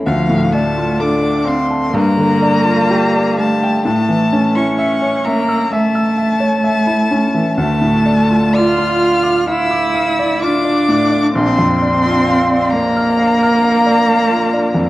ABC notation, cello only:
X:1
M:4/4
L:1/16
Q:1/4=64
K:Dm
V:1 name="Cello"
F,2 A,2 D2 C2 B,6 A,2 | A,3 ^C3 B,2 A,8 | A,4 F4 E4 D4 | C6 B,8- B,2 |]